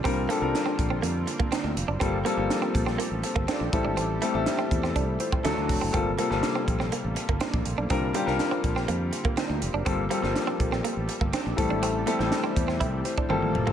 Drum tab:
HH |x-x-x-x-x-x-x-x-|x-x-x-x-x-x-x-x-|x-x-x-x-x-x-x-o-|x-x-x-x-x-x-x-x-|
SD |----o-------o---|----o--o----o---|----o--o----o---|---oo--o----o---|
T1 |----------------|----------------|----------------|----------------|
T2 |----------------|----------------|----------------|----------------|
FT |----------------|----------------|----------------|----------------|
BD |o-----o----o----|o-----o----o--o-|------o-o--o--o-|o-----o----o-o--|

HH |x-x-x-x-x-x-x-x-|x-x-x-x-x-x-x-x-|x-x-x-x-x-x-----|
SD |---oo--o----o---|---oo--o----o---|---oo--o--------|
T1 |----------------|----------------|------------o---|
T2 |----------------|----------------|--------------o-|
FT |----------------|----------------|---------------o|
BD |o-----o----o----|o-----o----o--o-|------o-o--o----|